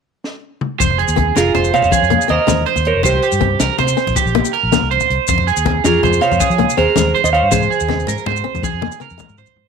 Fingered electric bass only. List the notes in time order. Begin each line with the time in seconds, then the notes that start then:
0.80 F1
1.08 D#2
1.37 F1
1.55 F1
1.83 F1
2.02 F2
2.30 D#2
2.48 D#2
2.76 D#2
2.95 F1
3.03 C2
3.32 G2
3.60 C2
3.79 C3
4.07 A#1
4.25 A#1
4.63 A#1
4.82 C2
5.10 C2
5.28 F2
5.57 D#2
5.85 F2
6.04 F2
6.32 F2
6.50 F3
6.78 D#2
6.97 D#2
7.24 D#2
7.42 G2
7.52 G#2
7.81 D#2
8.08 G#2
8.26 G#2
8.54 F2
8.73 F2
9.11 F2
9.29 G#2
9.56 G#2